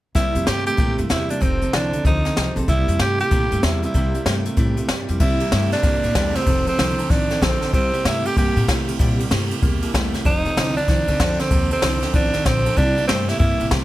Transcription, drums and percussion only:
0.15 kick, snare, closed hi-hat
0.35 closed hi-hat
0.47 snare, closed hi-hat
0.66 closed hi-hat
0.78 kick, closed hi-hat
0.98 closed hi-hat
1.10 snare, closed hi-hat
1.30 closed hi-hat
1.42 kick, closed hi-hat
1.62 closed hi-hat
1.73 snare, closed hi-hat
1.93 closed hi-hat
2.05 kick, closed hi-hat
2.25 snare, closed hi-hat
2.37 snare, closed hi-hat
2.57 closed hi-hat
2.68 kick, closed hi-hat
2.88 closed hi-hat
2.99 snare, closed hi-hat
3.20 closed hi-hat
3.31 kick, closed hi-hat
3.51 closed hi-hat
3.63 snare, closed hi-hat
3.83 closed hi-hat
3.95 kick, closed hi-hat
4.15 closed hi-hat
4.26 snare, closed hi-hat
4.45 closed hi-hat
4.57 kick, closed hi-hat
4.77 closed hi-hat
4.88 snare, closed hi-hat
5.09 closed hi-hat
5.20 kick, crash
5.40 ride
5.52 snare, ride
5.72 snare, ride
5.83 kick, snare, ride
6.04 ride
6.15 kick, snare, ride
6.35 snare, ride
6.46 kick, ride
6.67 ride
6.79 snare, ride
6.99 ride
7.10 kick, snare, ride
7.30 snare, ride
7.42 kick, snare, ride
7.62 snare, ride
7.73 kick, ride
7.94 ride
8.05 snare, ride
8.25 ride
8.37 kick, ride
8.57 ride
8.68 kick, snare, ride
8.88 ride
9.00 kick, ride
9.20 ride
9.31 snare, ride
9.51 ride
9.62 kick, ride
9.82 ride
9.94 kick, snare, ride
10.14 snare, ride
10.25 kick, ride
10.45 ride
10.57 snare, ride
10.77 ride
10.88 kick, snare, ride
11.08 ride
11.20 kick, snare, ride
11.39 snare, ride
11.51 kick, ride
11.71 ride
11.82 snare, ride
12.02 snare, ride
12.13 kick, ride
12.33 snare, ride
12.46 kick, snare, ride
12.66 ride
12.77 kick, ride
12.97 ride
13.09 snare, ride
13.29 snare, ride
13.40 kick, ride
13.60 ride
13.71 kick, snare, ride

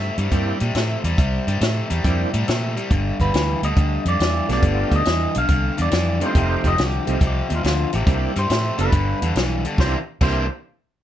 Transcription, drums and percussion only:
0.18 closed hi-hat
0.32 kick, closed hi-hat
0.60 closed hi-hat
0.75 snare, closed hi-hat
1.04 closed hi-hat
1.18 kick, closed hi-hat
1.48 closed hi-hat
1.61 snare, closed hi-hat
1.90 closed hi-hat
2.04 kick, closed hi-hat
2.34 closed hi-hat
2.48 snare, closed hi-hat
2.77 closed hi-hat
2.91 kick, closed hi-hat
3.20 kick, closed hi-hat
3.34 snare, closed hi-hat
3.63 closed hi-hat
3.77 kick, closed hi-hat
4.06 closed hi-hat
4.20 snare, closed hi-hat
4.49 snare, closed hi-hat
4.63 kick, closed hi-hat
4.91 kick, closed hi-hat
5.05 snare, closed hi-hat
5.35 closed hi-hat
5.49 kick, closed hi-hat
5.78 closed hi-hat
5.91 snare, closed hi-hat
6.21 closed hi-hat
6.35 kick, closed hi-hat
6.64 kick, closed hi-hat
6.78 snare, closed hi-hat
7.07 closed hi-hat
7.21 kick, closed hi-hat
7.50 closed hi-hat
7.64 snare, closed hi-hat
7.93 closed hi-hat
8.07 kick, closed hi-hat
8.36 closed hi-hat
8.50 snare, closed hi-hat
8.79 closed hi-hat
8.92 kick, closed hi-hat
9.22 closed hi-hat
9.36 snare, closed hi-hat
9.65 closed hi-hat
9.78 kick, snare
10.21 kick, crash

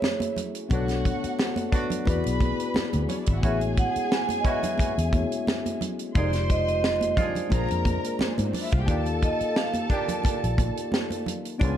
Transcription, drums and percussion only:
0.02 snare, muted conga, high conga
0.20 closed hi-hat, muted conga, high conga
0.36 closed hi-hat, low conga
0.55 closed hi-hat
0.70 kick, closed hi-hat, muted conga
0.88 snare, closed hi-hat, muted conga
1.05 kick, closed hi-hat
1.24 closed hi-hat
1.39 snare, muted conga
1.56 closed hi-hat, muted conga, high conga
1.72 kick, closed hi-hat
1.90 closed hi-hat, low conga
2.05 kick, closed hi-hat, muted conga, high conga
2.24 closed hi-hat, muted conga
2.40 kick, closed hi-hat, high conga
2.60 closed hi-hat
2.74 snare, high conga
2.93 closed hi-hat, high conga
3.09 closed hi-hat, low conga
3.26 kick, closed hi-hat
3.43 kick, closed hi-hat
3.61 closed hi-hat, muted conga
3.77 kick, closed hi-hat
3.96 closed hi-hat
4.12 snare, muted conga
4.29 closed hi-hat, high conga
4.45 kick, closed hi-hat
4.63 closed hi-hat, low conga
4.78 kick, closed hi-hat, high conga
4.98 closed hi-hat
5.13 kick, closed hi-hat, high conga
5.32 closed hi-hat
5.47 snare, muted conga, high conga
5.66 closed hi-hat, high conga
5.81 closed hi-hat, low conga
5.99 closed hi-hat
6.15 kick, closed hi-hat, muted conga
6.33 snare, closed hi-hat, muted conga
6.50 kick, closed hi-hat
6.68 closed hi-hat
6.84 snare, muted conga
7.01 closed hi-hat, muted conga, high conga
7.17 kick, closed hi-hat, low conga
7.35 closed hi-hat, low conga
7.50 kick, closed hi-hat, high conga
7.69 closed hi-hat, muted conga
7.85 kick, closed hi-hat, high conga
8.04 closed hi-hat
8.19 snare, muted conga, high conga
8.38 closed hi-hat, muted conga, high conga
8.53 open hi-hat, low conga
8.72 kick, closed hi-hat
8.88 kick, closed hi-hat
9.06 closed hi-hat, muted conga
9.22 kick, closed hi-hat
9.40 closed hi-hat
9.56 snare
9.74 closed hi-hat, high conga
9.90 kick, closed hi-hat
10.08 closed hi-hat, low conga
10.24 kick, closed hi-hat, high conga
10.44 closed hi-hat
10.58 kick, closed hi-hat, high conga
10.77 closed hi-hat
10.92 snare, muted conga, high conga
11.10 closed hi-hat, high conga
11.26 closed hi-hat, low conga
11.45 closed hi-hat
11.60 kick, closed hi-hat, muted conga

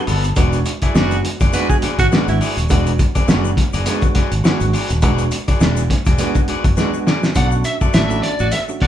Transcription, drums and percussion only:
0.07 open hi-hat, shaker
0.24 closed hi-hat, shaker
0.36 kick, closed hi-hat, shaker
0.53 closed hi-hat, shaker
0.65 closed hi-hat, shaker
0.82 kick, closed hi-hat, shaker
0.95 snare, shaker
1.11 closed hi-hat, shaker
1.25 closed hi-hat
1.40 kick, closed hi-hat, shaker
1.53 snare, closed hi-hat, shaker
1.70 kick, shaker
1.82 snare, closed hi-hat
1.99 kick, closed hi-hat, shaker
2.12 snare, shaker
2.28 closed hi-hat, shaker
2.41 open hi-hat, shaker
2.58 closed hi-hat, shaker
2.69 kick, closed hi-hat, shaker
2.86 closed hi-hat, shaker
2.99 kick, closed hi-hat, shaker
3.15 kick, closed hi-hat, shaker
3.28 snare, shaker
3.45 shaker
3.57 kick, snare, closed hi-hat
3.73 closed hi-hat, shaker
3.86 snare, closed hi-hat, shaker
4.02 kick, closed hi-hat, shaker
4.15 kick, snare, closed hi-hat
4.32 closed hi-hat, shaker
4.44 snare, shaker
4.60 closed hi-hat, shaker
4.73 open hi-hat, shaker
4.90 closed hi-hat, shaker
5.02 kick, closed hi-hat, shaker
5.18 closed hi-hat, shaker
5.31 closed hi-hat, shaker
5.48 kick, closed hi-hat, shaker
5.61 snare, shaker
5.77 closed hi-hat, shaker
5.90 kick, snare, closed hi-hat
6.05 kick, closed hi-hat, shaker
6.18 snare, closed hi-hat, shaker
6.35 kick, closed hi-hat, shaker
6.48 closed hi-hat
6.64 kick, closed hi-hat, shaker
6.77 snare, shaker
6.94 shaker
7.07 snare, shaker
7.23 snare, shaker
7.35 kick, closed hi-hat, shaker
7.51 shaker
7.64 closed hi-hat, shaker
7.81 kick, shaker
7.94 snare, closed hi-hat, shaker
8.10 shaker
8.23 snare, closed hi-hat
8.39 shaker
8.52 snare, closed hi-hat, shaker
8.69 shaker
8.80 kick, snare, open hi-hat

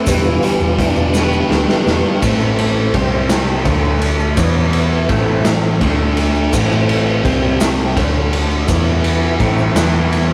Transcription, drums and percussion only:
0.07 kick, closed hi-hat, maracas
0.24 maracas
0.42 closed hi-hat, maracas
0.60 maracas
0.79 kick, closed hi-hat
0.96 maracas
1.14 snare, maracas
1.33 maracas
1.51 snare
1.69 snare
1.86 snare, maracas
2.22 kick, ride, maracas
2.40 maracas
2.58 ride
2.94 kick, ride
3.29 snare, ride, maracas
3.65 kick, ride, maracas
4.02 ride
4.20 maracas
4.37 kick, ride, maracas
4.73 ride
5.09 kick, ride
5.45 snare, ride, maracas
5.81 kick, ride, maracas
6.17 ride
6.35 maracas
6.53 kick, crash, maracas
6.72 maracas
6.89 ride
7.25 kick, ride
7.61 snare, ride, maracas
7.97 kick, ride, maracas
8.33 ride
8.51 maracas
8.68 kick, ride, maracas
9.04 ride
9.40 kick, ride
9.58 maracas
9.76 snare, ride, maracas
10.12 ride, maracas

